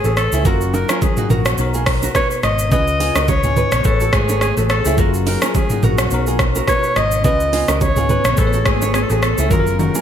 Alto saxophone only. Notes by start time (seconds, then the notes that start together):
Already playing: G#4
0.18 A4
0.46 F#4
0.74 A#4
1.03 G#4
1.31 F#4
2.16 C#5
2.44 D#5
2.72 D#5
3.29 C#5
3.86 A4
4.14 G#4
4.42 G#4
4.71 A4
4.99 F#4
5.27 A#4
5.56 G#4
5.84 F#4
6.69 C#5
6.97 D#5
7.26 D#5
7.76 D#5
7.82 C#5
8.39 A4
8.67 G#4
8.95 G#4
9.03 A4
9.11 G#4
9.23 A4
9.52 A#4
9.80 A#4